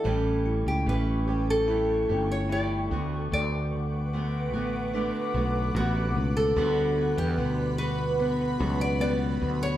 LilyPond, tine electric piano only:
\new Staff \with { instrumentName = "Tine electric piano" } { \time 4/4 \key d \major \tempo 4 = 74 a8 e'8 a4 e'8 a8 e'8 d8 | a8 d4 a8 d'8 a4 b,8 | d'8 b8 b,4 b8 fis8 b4 | }